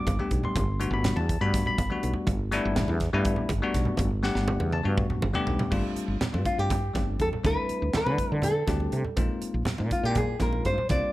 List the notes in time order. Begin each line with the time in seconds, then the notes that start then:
Already playing: D6
0.07 G1, kick, closed hi-hat, muted conga
0.19 G3 A3 B3 D4 G4, high conga
0.31 B1, kick, closed hi-hat
0.43 C6, low conga
0.56 G1, kick, closed hi-hat, muted conga
0.80 G3 A3 B3 D4 F#4, closed hi-hat
0.91 G1 B5
1.04 snare, closed hi-hat, high conga, low conga
1.16 E2 A5, muted conga
1.29 kick, closed hi-hat
1.41 G2 G3 A3 B3 D4 F#4 B5
1.54 kick, snare, closed hi-hat, low conga
1.66 B5, muted fretless electric bass stroke, low conga
1.78 G1, kick, closed hi-hat, muted conga
1.90 G3 A3 B3 D4 F#4, high conga
2.03 B1, closed hi-hat
2.14 low conga
2.27 G1, kick, closed hi-hat, muted conga
2.40 low conga
2.52 G3 A3 B3 D4 E4, snare, closed hi-hat
2.65 G1
2.76 snare, closed hi-hat, high conga, low conga
2.88 E2, muted conga, low conga
3.00 kick, snare, closed hi-hat
3.13 G2 G3 A3 B3 D4 E4, low conga
3.25 kick, closed hi-hat
3.36 muted fretless electric bass stroke, low conga
3.49 G1, kick, closed hi-hat, muted conga
3.62 G3 A3 B3 D4 F#4
3.74 B1, kick, snare, closed hi-hat
3.85 low conga
3.97 G1, kick, closed hi-hat, muted conga, low conga
4.11 low conga
4.23 G3 A3 B3 D4 G4 F#5, snare, low conga
4.35 G1, snare
4.48 high conga, low conga
4.60 E2, high tom, muted conga
4.72 A5, high tom
4.83 G2 G3 A3 B3 D4 F#4
4.97 kick, mid tom
5.10 muted fretless electric bass stroke, mid tom, low conga
5.22 G1, muted conga
5.33 G3 A3 B3 D4 G4, floor tom, high conga
5.47 B1, floor tom
5.59 floor tom, low conga
5.71 G1 G3 A3 C4 D4 F4, kick, crash, muted conga
5.96 muted fretless electric bass stroke, closed hi-hat, low conga
6.08 G1
6.21 snare, closed hi-hat, high conga, low conga
6.32 G2 G3 A3 C4 D4 F4, muted conga
6.45 F4, muted fretless electric bass stroke, kick, closed hi-hat
6.58 G2 G4, low conga
6.70 kick, snare, closed hi-hat, low conga
6.94 G1 G3 A3 C4 D4 G4, kick, snare, closed hi-hat, muted conga
7.19 E2 A4, kick, closed hi-hat
7.33 muted fretless electric bass stroke, low conga
7.43 D2 G3 A3 C4 D4 E4 B4, kick, closed hi-hat, muted conga
7.69 muted fretless electric bass stroke, closed hi-hat, low conga
7.82 D2
7.93 B4, snare, closed hi-hat, high conga, low conga
8.05 D3 G3 A3 C4 D4 E4, muted conga
8.18 kick, closed hi-hat
8.31 D3, low conga
8.42 A4, closed hi-hat, low conga
8.67 D2 G3 A3 C4 D4 G4, kick, snare, closed hi-hat, muted conga
8.80 high conga
8.92 C3, closed hi-hat, low conga
9.05 muted fretless electric bass stroke, low conga
9.16 A#1 G#3 A#3 C4 D#4 F4, kick, closed hi-hat, muted conga
9.41 muted fretless electric bass stroke, closed hi-hat, low conga
9.54 A#1
9.65 muted fretless electric bass stroke, snare, closed hi-hat, high conga, low conga
9.78 A#2 G#3 A#3 C4 D#4 F4, muted conga
9.91 F4, muted fretless electric bass stroke, kick, closed hi-hat
10.03 A#2 G4
10.15 G#4, kick, closed hi-hat, low conga
10.40 A#1 G#3 A#3 C4 D#4 F4 A#4, kick, snare, closed hi-hat, muted conga
10.53 high conga
10.65 G2 C5, kick, closed hi-hat, low conga
10.78 muted fretless electric bass stroke, low conga
10.89 C2 G3 A#3 C4 D4 F4 D5, kick, closed hi-hat, muted conga, low conga